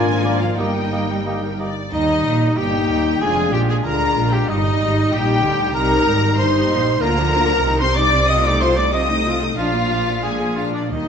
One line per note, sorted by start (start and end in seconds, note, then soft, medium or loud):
0.00 0.58 G#1 medium
0.00 0.57 F3 medium
0.00 0.40 G#3 medium
0.00 1.60 A#3 medium
0.00 0.41 D4 medium
0.00 0.57 F4 medium
0.00 0.57 A#4 medium
0.00 0.57 D5 medium
0.00 0.40 G#5 medium
0.00 0.40 G#5 loud
0.24 0.40 A#3 medium
0.24 0.40 F4 medium
0.24 0.39 D5 medium
0.41 0.58 F3 medium
0.41 0.58 F5 medium
0.41 0.60 F5 medium
0.57 1.69 G1 medium
0.57 1.57 G3 medium
0.57 1.72 G3 medium
0.57 0.75 A#3 medium
0.57 1.58 D#4 medium
0.57 1.72 D#4 medium
0.57 0.74 G4 medium
0.57 1.18 A#4 medium
0.57 0.73 D#5 medium
0.57 1.19 D#5 medium
0.57 1.57 G5 loud
0.57 1.59 G5 medium
0.92 1.08 A#3 medium
0.92 1.07 G4 medium
0.92 1.07 D#5 medium
1.26 1.42 A#3 medium
1.26 1.41 G4 medium
1.26 1.57 A#4 medium
1.26 1.41 D#5 medium
1.60 1.75 A#3 medium
1.60 1.75 G4 medium
1.60 1.93 D5 medium
1.60 1.75 D#5 medium
1.92 2.23 D#2 medium
1.92 2.23 D#3 medium
1.92 2.53 G3 medium
1.92 2.53 D#4 medium
1.92 2.60 D#4 loud
1.92 2.53 D#4 medium
1.92 2.58 D#4 medium
1.92 2.53 D#5 loud
1.92 2.54 D#5 medium
2.25 2.56 A#1 medium
2.25 2.57 A#2 medium
2.56 2.88 G1 medium
2.56 2.88 G2 medium
2.56 3.19 G3 medium
2.56 3.20 A#3 medium
2.56 3.20 D#4 medium
2.56 3.20 G4 medium
2.56 3.21 G4 medium
2.56 3.22 G5 loud
2.56 3.20 G5 loud
2.90 3.21 D#2 medium
3.21 3.52 F1 medium
3.21 3.52 F2 medium
3.21 3.85 G#3 medium
3.21 4.49 G#3 medium
3.21 3.85 D4 medium
3.21 3.84 F4 medium
3.21 3.54 G#4 medium
3.21 3.53 G#4 medium
3.21 3.52 G#4 medium
3.21 3.51 G#5 medium
3.21 3.54 G#5 loud
3.52 3.85 A#1 medium
3.52 3.85 A#2 medium
3.52 3.69 G4 medium
3.52 3.60 G4 medium
3.52 3.69 G5 medium
3.52 3.60 G5 loud
3.68 3.75 G#4 medium
3.68 3.77 G#4 medium
3.68 3.85 G#5 medium
3.68 3.76 G#5 medium
3.84 4.16 D2 medium
3.84 4.16 D3 medium
3.84 4.48 G#3 medium
3.84 4.48 D4 medium
3.84 4.47 F4 medium
3.84 4.32 A#4 medium
3.84 4.34 A#4 loud
3.84 4.31 A#5 loud
3.84 4.32 A#5 loud
4.17 4.48 A#1 medium
4.17 4.48 A#2 medium
4.32 4.51 G4 medium
4.32 4.48 G4 medium
4.32 4.49 G5 medium
4.32 4.49 G5 loud
4.47 4.80 G1 medium
4.47 4.79 G2 medium
4.47 5.11 G3 medium
4.47 5.10 D#4 medium
4.47 5.12 D#4 medium
4.47 5.13 D#4 medium
4.47 5.15 D#4 medium
4.47 5.74 D#4 medium
4.47 5.10 D#5 medium
4.47 5.11 D#5 loud
4.80 5.11 G#1 medium
4.80 5.11 G#2 medium
5.11 5.43 A#1 medium
5.11 5.42 A#2 medium
5.11 5.73 G3 medium
5.11 5.74 G3 medium
5.11 5.74 D#4 medium
5.11 5.74 G4 medium
5.11 5.74 G4 loud
5.11 5.75 G4 medium
5.11 5.73 G5 loud
5.11 5.75 G5 loud
5.43 5.75 D2 medium
5.43 5.74 D3 medium
5.73 6.05 C2 medium
5.73 6.05 C3 loud
5.73 6.37 G3 medium
5.73 6.37 D#4 medium
5.73 6.36 A#4 loud
5.73 6.37 A#4 loud
5.73 6.36 A#5 loud
6.06 6.37 G#1 medium
6.06 6.37 G#2 medium
6.37 6.70 G1 medium
6.37 6.69 G2 medium
6.37 7.00 G3 medium
6.37 7.00 D#4 medium
6.37 7.03 C5 medium
6.37 7.01 C5 medium
6.37 7.02 C5 medium
6.37 7.01 C6 loud
6.37 7.00 C6 medium
6.69 7.00 A#1 medium
6.69 7.00 A#2 medium
7.01 7.60 D2 loud
7.01 7.60 D3 medium
7.01 7.16 A#3 medium
7.01 7.15 F4 medium
7.01 7.82 A#4 loud
7.01 7.78 A#4 loud
7.01 7.82 A#4 loud
7.01 7.78 A#5 loud
7.01 7.79 A#5 loud
7.18 7.33 F3 medium
7.18 7.33 D4 medium
7.33 7.45 F3 medium
7.33 7.49 A#3 medium
7.33 7.49 F4 medium
7.33 7.45 F4 medium
7.49 7.65 F3 medium
7.49 7.64 D4 medium
7.64 9.57 C2 medium
7.64 9.57 C3 medium
7.64 7.79 D#3 medium
7.64 7.79 D#4 medium
7.80 7.96 G3 medium
7.80 7.96 C4 medium
7.80 7.97 C5 medium
7.80 7.96 C5 medium
7.80 7.97 C5 loud
7.80 7.96 C6 loud
7.80 7.99 C6 loud
7.96 8.12 D#3 medium
7.96 8.07 G3 medium
7.96 8.12 D#4 medium
7.96 8.08 D#4 medium
7.96 8.28 D5 medium
7.96 8.28 D5 loud
7.96 8.27 D5 loud
7.96 8.28 D6 loud
7.96 8.29 D6 loud
8.13 8.28 G3 medium
8.13 8.28 C4 medium
8.28 8.43 C4 medium
8.28 8.43 F4 medium
8.28 8.44 D#5 loud
8.28 8.46 D#5 medium
8.28 8.46 D#5 loud
8.28 8.44 D#6 loud
8.28 8.48 D#6 medium
8.45 8.61 A3 medium
8.45 8.61 D#4 medium
8.45 8.63 D5 loud
8.45 8.61 D5 medium
8.45 8.62 D5 medium
8.45 8.61 D6 loud
8.45 8.63 D6 medium
8.60 8.72 A3 medium
8.60 8.77 C4 medium
8.60 8.72 F4 medium
8.60 8.77 F4 medium
8.60 8.78 C5 medium
8.60 8.77 C5 medium
8.60 8.79 C5 loud
8.60 8.77 C6 loud
8.60 8.79 C6 medium
8.77 8.93 A3 medium
8.77 8.93 D#4 medium
8.77 8.92 D5 medium
8.77 8.93 D5 medium
8.77 8.83 D5 medium
8.77 8.93 D6 loud
8.77 8.93 D6 medium
8.93 9.08 C4 medium
8.93 9.08 F4 medium
8.93 9.34 D#5 loud
8.93 9.56 D#5 medium
8.93 9.34 D#5 loud
8.93 9.57 D#6 loud
8.93 9.35 D#6 loud
9.09 9.25 A3 medium
9.09 9.25 D#4 medium
9.25 9.37 A3 medium
9.25 9.41 C4 medium
9.25 9.41 F4 medium
9.25 9.37 F4 medium
9.41 9.57 A3 medium
9.41 9.57 D#4 medium
9.57 10.89 A#1 medium
9.57 10.89 A#2 medium
9.57 9.73 F3 medium
9.57 10.20 F3 medium
9.57 9.72 D4 medium
9.57 10.20 D4 medium
9.57 10.19 F4 medium
9.57 10.25 F4 medium
9.57 10.22 F4 loud
9.57 10.19 F5 loud
9.57 10.22 F5 loud
9.74 9.90 A#3 medium
9.74 9.90 F4 medium
9.91 10.07 F3 medium
9.91 10.07 D4 medium
10.07 10.23 A#3 medium
10.07 10.23 F4 medium
10.23 10.91 F3 medium
10.23 10.39 G#3 medium
10.23 10.39 D4 medium
10.23 10.91 D4 medium
10.23 10.55 G#4 medium
10.23 10.57 G#4 medium
10.23 10.59 G#4 medium
10.23 10.57 G#5 medium
10.23 10.58 G#5 loud
10.40 10.57 A#3 medium
10.40 10.57 F4 medium
10.56 10.75 G#3 medium
10.56 10.75 D4 soft
10.56 10.64 F4 medium
10.56 10.75 F4 medium
10.56 10.64 F5 medium
10.56 10.75 F5 medium
10.74 10.91 A#3 medium
10.74 10.82 D4 medium
10.74 10.92 D4 medium
10.74 10.83 D4 medium
10.74 10.92 F4 medium
10.74 10.91 D5 medium
10.74 10.92 D5 medium
10.91 11.08 D#2 medium
10.91 11.08 D#3 medium
10.91 10.98 D#3 soft
10.91 11.08 G3 medium
10.91 11.08 A#3 soft
10.91 11.08 D#4 medium
10.91 11.08 D#5 medium
10.99 11.07 D#3 soft